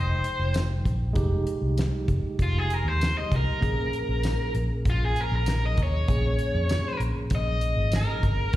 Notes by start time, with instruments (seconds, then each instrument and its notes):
Already playing: fingered electric bass F1, tine electric piano G#3 D#4 G5, overdriven electric guitar C5
0.24 closed hi-hat
0.39 fingered electric bass F1
0.54 snare, closed hi-hat, tambourine
0.85 fingered electric bass A#1, kick, closed hi-hat
1.13 fingered electric bass F1, tine electric piano G#3 D#4 G4, kick, closed hi-hat
1.47 closed hi-hat
1.62 fingered electric bass C2
1.78 snare, closed hi-hat, tambourine
2.08 fingered electric bass F1, kick, closed hi-hat
2.23 muted fingered electric bass stroke
2.39 fingered electric bass F1, overdriven electric guitar F4, kick, closed hi-hat
2.58 overdriven electric guitar G#4
2.70 overdriven electric guitar A#4, closed hi-hat
2.85 fingered electric bass D#2, overdriven electric guitar C5
3.01 snare, closed hi-hat, tambourine
3.18 overdriven electric guitar D#5
3.32 fingered electric bass C2, kick, closed hi-hat
3.36 overdriven electric guitar A#4
3.61 fingered electric bass A#1, tine electric piano A#3 C#4 G#4, kick, closed hi-hat
3.93 muted fingered electric bass stroke, closed hi-hat
4.09 fingered electric bass A#1
4.23 snare, closed hi-hat, tambourine
4.55 fingered electric bass A#1, closed hi-hat
4.85 fingered electric bass A#1, kick, closed hi-hat
4.90 overdriven electric guitar F4
5.05 overdriven electric guitar G#4
5.16 closed hi-hat
5.21 overdriven electric guitar A#4
5.32 fingered electric bass A#1, overdriven electric guitar A#4
5.46 snare, closed hi-hat, tambourine
5.66 overdriven electric guitar D#5
5.77 fingered electric bass D#2, kick, closed hi-hat
5.83 overdriven electric guitar C#5
6.08 fingered electric bass A#1, tine electric piano A#3 C#4 G#4, kick, closed hi-hat
6.39 closed hi-hat
6.54 fingered electric bass F2
6.69 snare, closed hi-hat, tambourine
7.00 fingered electric bass A#1, closed hi-hat
7.16 muted fingered electric bass stroke
7.30 fingered electric bass A#1, kick, closed hi-hat
7.35 overdriven electric guitar D#5
7.61 closed hi-hat
7.76 fingered electric bass G#1
7.92 snare, closed hi-hat, tambourine
7.96 overdriven electric guitar A#4
8.23 fingered electric bass G1, kick, closed hi-hat
8.53 tine electric piano G#3, closed hi-hat